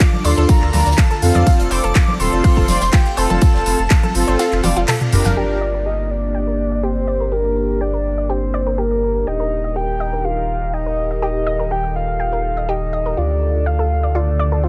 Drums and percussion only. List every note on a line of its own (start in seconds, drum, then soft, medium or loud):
0.00 kick loud
0.00 snare loud
0.00 clap loud
0.00 closed hi-hat medium
0.00 ride medium
0.00 tambourine medium
0.13 high conga medium
0.24 open hi-hat loud
0.24 tambourine medium
0.24 high woodblock medium
0.37 closed hi-hat medium
0.37 cowbell medium
0.49 kick loud
0.49 closed hi-hat medium
0.49 ride medium
0.49 tambourine loud
0.62 clap soft
0.73 snare medium
0.73 open hi-hat loud
0.73 tambourine medium
0.73 high conga medium
0.73 high woodblock medium
0.79 snare medium
0.79 tambourine medium
0.86 snare loud
0.86 closed hi-hat medium
0.86 tambourine medium
0.86 cowbell medium
0.91 snare loud
0.91 tambourine medium
0.98 kick loud
0.98 snare loud
0.98 clap loud
0.98 closed hi-hat medium
0.98 ride medium
0.98 tambourine medium
1.11 snare soft
1.11 closed hi-hat soft
1.22 open hi-hat loud
1.22 tambourine medium
1.22 high woodblock soft
1.34 closed hi-hat soft
1.34 closed hi-hat medium
1.34 high conga loud
1.47 kick loud
1.47 closed hi-hat medium
1.47 ride medium
1.47 tambourine medium
1.59 closed hi-hat soft
1.59 cowbell medium
1.71 open hi-hat loud
1.71 tambourine medium
1.71 high woodblock medium
1.84 closed hi-hat medium
1.84 closed hi-hat soft
1.95 kick loud
1.95 snare loud
1.95 clap loud
1.95 closed hi-hat medium
1.95 ride medium
1.95 tambourine medium
2.08 high conga loud
2.20 open hi-hat loud
2.20 tambourine medium
2.20 high woodblock medium
2.32 closed hi-hat medium
2.32 cowbell medium
2.44 kick loud
2.44 closed hi-hat medium
2.44 open hi-hat medium
2.44 ride medium
2.57 kick medium
2.68 snare loud
2.68 open hi-hat loud
2.68 tambourine medium
2.68 high conga medium
2.68 high woodblock soft
2.81 snare loud
2.81 closed hi-hat medium
2.81 tambourine medium
2.93 kick loud
2.93 snare loud
2.93 clap loud
2.93 closed hi-hat medium
2.93 ride medium
2.93 tambourine medium
3.06 snare soft
3.06 closed hi-hat soft
3.17 open hi-hat loud
3.17 tambourine medium
3.17 high woodblock medium
3.30 closed hi-hat medium
3.30 cowbell medium
3.30 high conga medium
3.42 kick loud
3.42 closed hi-hat medium
3.42 ride medium
3.42 tambourine loud
3.54 snare medium
3.54 cowbell medium
3.66 open hi-hat loud
3.66 tambourine medium
3.66 high woodblock medium
3.79 closed hi-hat medium
3.90 kick loud
3.90 snare loud
3.90 clap loud
3.90 closed hi-hat medium
3.90 ride medium
3.90 tambourine medium
4.03 closed hi-hat soft
4.03 high conga loud
4.15 open hi-hat loud
4.15 tambourine medium
4.15 high woodblock soft
4.27 closed hi-hat soft
4.27 closed hi-hat medium
4.27 cowbell medium
4.39 snare loud
4.39 closed hi-hat medium
4.39 ride medium
4.39 tambourine medium
4.52 clap soft
4.52 closed hi-hat soft
4.63 open hi-hat loud
4.63 high tom medium
4.63 tambourine medium
4.63 high conga medium
4.63 high woodblock medium
4.76 closed hi-hat medium
4.76 cowbell medium
4.88 snare loud
4.88 clap loud
4.88 open hi-hat medium
4.88 mid tom medium
4.88 ride medium
4.88 tambourine medium
5.01 closed hi-hat soft
5.01 mid tom medium
5.12 mid tom loud
5.12 open hi-hat loud
5.12 tambourine medium
5.12 high woodblock medium
5.25 snare loud
5.25 closed hi-hat medium
5.25 mid tom medium
5.25 tambourine medium
5.25 high conga medium